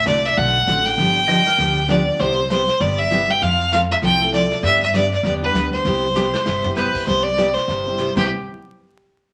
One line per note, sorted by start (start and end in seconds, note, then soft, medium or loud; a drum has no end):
0.06 0.32 C2 medium
0.06 0.17 D3 medium
0.06 0.17 A3 medium
0.06 0.17 C4 medium
0.06 0.18 F#4 medium
0.06 0.18 A4 medium
0.06 0.27 D5 loud
0.06 snare medium
0.06 hi-hat pedal medium
0.25 0.38 E5 loud
0.25 snare soft
0.36 0.63 B1 medium
0.36 0.56 D3 medium
0.36 0.57 A3 medium
0.36 0.57 C4 medium
0.36 0.57 F#4 medium
0.36 0.57 A4 medium
0.36 0.86 F#5 loud
0.36 brush sweep soft
0.36 snare soft
0.66 0.93 A1 medium
0.66 0.78 D3 medium
0.66 0.97 A3 medium
0.66 0.78 A3 medium
0.66 0.97 C4 medium
0.66 0.78 C4 medium
0.66 0.97 D4 medium
0.66 0.98 F#4 medium
0.66 0.78 F#4 medium
0.66 0.98 A4 medium
0.66 0.78 A4 medium
0.66 snare medium
0.66 hi-hat pedal medium
0.85 1.89 G5 loud
0.85 snare soft
0.98 1.46 G1 medium
0.98 1.18 D3 medium
0.98 1.18 F3 medium
0.98 1.18 B3 medium
0.98 1.18 D4 medium
0.98 1.18 G4 medium
0.98 brush sweep soft
0.98 snare medium
1.28 1.39 D3 medium
1.28 1.39 F3 medium
1.28 1.39 B3 medium
1.28 1.39 D4 medium
1.28 1.39 G4 medium
1.28 1.46 D#5 medium
1.28 snare medium
1.28 hi-hat pedal medium
1.47 1.58 A#4 medium
1.47 snare soft
1.58 2.07 D2 medium
1.58 1.78 D3 medium
1.58 1.78 F3 medium
1.58 1.78 B3 medium
1.58 1.78 D4 medium
1.58 1.79 G4 medium
1.58 1.83 G4 medium
1.58 brush sweep soft
1.58 snare soft
1.87 1.99 D3 medium
1.87 1.99 F3 medium
1.87 2.18 G3 medium
1.87 2.00 B3 medium
1.87 2.18 B3 medium
1.87 2.00 D4 medium
1.87 2.20 D4 medium
1.87 2.20 F4 medium
1.87 2.00 G4 medium
1.87 2.19 G4 medium
1.87 2.22 D5 medium
1.87 snare medium
1.87 hi-hat pedal soft
2.19 2.68 C2 medium
2.19 2.39 C3 medium
2.19 2.36 G3 medium
2.19 2.40 G3 medium
2.19 2.36 B3 medium
2.19 2.39 B3 medium
2.19 2.36 C4 medium
2.19 2.40 E4 medium
2.19 2.36 E4 medium
2.19 2.36 G4 medium
2.19 2.40 G4 medium
2.19 2.50 C5 loud
2.19 brush sweep soft
2.19 snare soft
2.50 2.61 C3 medium
2.50 2.61 G3 medium
2.50 2.61 B3 medium
2.50 2.61 E4 medium
2.50 2.61 G4 medium
2.50 2.82 C5 loud
2.50 snare medium
2.50 hi-hat pedal medium
2.68 snare soft
2.80 3.29 G1 medium
2.80 3.00 C3 medium
2.80 3.00 G3 medium
2.80 3.01 B3 medium
2.80 3.01 E4 medium
2.80 3.01 G4 medium
2.80 3.00 D5 loud
2.80 brush sweep soft
2.80 snare soft
2.99 3.32 E5 loud
3.11 3.22 C3 medium
3.11 3.41 G3 medium
3.11 3.22 G3 medium
3.11 3.42 B3 medium
3.11 3.22 B3 medium
3.11 3.42 C4 medium
3.11 3.42 E4 medium
3.11 3.22 E4 medium
3.11 3.22 G4 medium
3.11 3.42 G4 medium
3.11 snare medium
3.11 hi-hat pedal medium
3.29 3.44 G5 loud
3.29 snare soft
3.41 3.90 F2 medium
3.41 3.61 F3 medium
3.41 3.61 C4 medium
3.41 3.62 E4 medium
3.41 3.62 A4 medium
3.41 3.72 F5 loud
3.41 brush sweep medium
3.41 snare soft
3.72 3.83 F3 medium
3.72 3.83 C4 medium
3.72 3.84 E4 medium
3.72 3.84 A4 medium
3.72 3.81 F5 loud
3.72 snare medium
3.72 hi-hat pedal medium
3.91 3.97 E5 medium
3.91 snare soft
4.02 4.51 C2 medium
4.02 4.22 F3 medium
4.02 4.22 C4 medium
4.02 4.22 E4 medium
4.02 4.23 A4 medium
4.02 4.31 G5 loud
4.02 brush sweep soft
4.02 snare soft
4.21 4.61 A3 medium
4.21 4.61 C4 medium
4.21 4.61 E4 medium
4.21 4.61 F4 medium
4.21 4.61 A4 medium
4.32 4.43 F3 medium
4.32 4.44 C4 medium
4.32 4.44 E4 medium
4.32 4.44 A4 medium
4.32 4.62 D5 medium
4.32 snare medium
4.32 hi-hat pedal soft
4.52 snare soft
4.63 5.12 G2 loud
4.63 4.83 D3 soft
4.63 4.83 G3 medium
4.63 4.83 B3 medium
4.63 4.83 D4 medium
4.63 4.83 G4 medium
4.63 4.81 E5 loud
4.63 brush sweep soft
4.63 snare soft
4.82 4.93 E5 medium
4.93 5.04 D3 medium
4.93 5.04 G3 medium
4.93 5.05 B3 medium
4.93 5.05 D4 medium
4.93 5.05 G4 medium
4.93 5.12 D5 loud
4.93 snare medium
4.93 hi-hat pedal medium
5.12 5.24 D5 medium
5.12 snare soft
5.23 5.49 E2 medium
5.23 5.44 D3 medium
5.23 5.44 G3 medium
5.23 5.44 B3 medium
5.23 5.45 D4 medium
5.23 5.44 G4 medium
5.23 5.33 D5 loud
5.23 brush sweep medium
5.23 snare soft
5.42 5.82 G3 medium
5.42 5.83 B3 medium
5.42 5.83 D4 medium
5.42 5.83 G4 medium
5.42 5.83 B4 medium
5.42 5.71 B4 medium
5.54 5.80 D2 medium
5.54 5.65 D3 medium
5.54 5.66 G3 medium
5.54 5.66 B3 medium
5.54 5.66 D4 medium
5.54 5.66 G4 medium
5.54 snare medium
5.54 hi-hat pedal medium
5.73 6.72 C5 medium
5.73 snare soft
5.85 6.34 C2 medium
5.85 6.05 C3 medium
5.85 6.05 G3 medium
5.85 6.05 B3 medium
5.85 6.06 E4 medium
5.85 6.06 G4 medium
5.85 brush sweep medium
5.85 snare soft
6.15 6.26 C3 medium
6.15 6.27 G3 medium
6.15 6.26 B3 medium
6.15 6.27 E4 medium
6.15 6.34 G4 medium
6.15 6.27 G4 medium
6.15 snare soft
6.15 hi-hat pedal medium
6.33 6.45 C5 medium
6.33 snare medium
6.46 6.94 G1 medium
6.46 6.66 C3 medium
6.46 6.65 G3 medium
6.46 6.66 B3 medium
6.46 6.66 E4 medium
6.46 6.66 G4 medium
6.46 6.75 E5 medium
6.46 snare medium
6.64 7.04 G3 medium
6.64 7.04 B3 medium
6.64 7.05 C4 medium
6.64 7.05 E4 medium
6.64 7.05 G4 medium
6.64 floor tom medium
6.75 6.87 C3 medium
6.75 6.87 G3 medium
6.75 6.87 B3 medium
6.75 6.87 E4 medium
6.75 6.87 G4 medium
6.75 7.05 B4 medium
6.75 7.00 C5 medium
6.75 snare soft
6.75 hi-hat pedal medium
6.95 kick medium
6.95 crash medium
7.06 7.56 C2 medium
7.06 7.26 C3 soft
7.06 7.27 G3 medium
7.06 7.27 B3 medium
7.06 7.27 E4 medium
7.06 7.27 G4 medium
7.06 7.25 C5 loud
7.06 brush sweep soft
7.06 snare soft
7.23 7.55 D5 loud
7.37 7.48 C3 medium
7.37 7.48 G3 medium
7.37 7.48 B3 medium
7.37 7.48 E4 medium
7.37 7.49 G4 medium
7.37 snare medium
7.37 hi-hat pedal medium
7.53 8.15 C5 medium
7.53 snare soft
7.68 8.07 G1 medium
7.68 7.88 C3 medium
7.68 7.88 G3 medium
7.68 7.88 B3 medium
7.68 7.88 E4 medium
7.68 7.88 G4 medium
7.68 brush sweep soft
7.68 snare soft
7.87 8.17 G3 medium
7.87 8.15 C4 medium
7.87 8.16 E4 medium
7.87 8.16 G4 medium
7.98 8.09 C3 medium
7.98 8.09 G3 medium
7.98 8.09 B3 medium
7.98 8.10 E4 medium
7.98 8.09 G4 medium
7.98 snare medium
7.98 hi-hat pedal medium
8.16 8.28 C2 medium
8.16 8.26 C3 medium
8.16 8.26 G3 medium
8.16 8.27 B3 medium
8.16 8.26 B3 medium
8.16 8.28 C4 medium
8.16 8.28 E4 medium
8.16 8.27 E4 medium
8.16 8.28 G4 medium
8.16 8.27 G4 medium
8.16 8.28 G4 medium
8.16 8.28 C5 medium
8.16 kick medium
8.16 snare medium
8.16 crash medium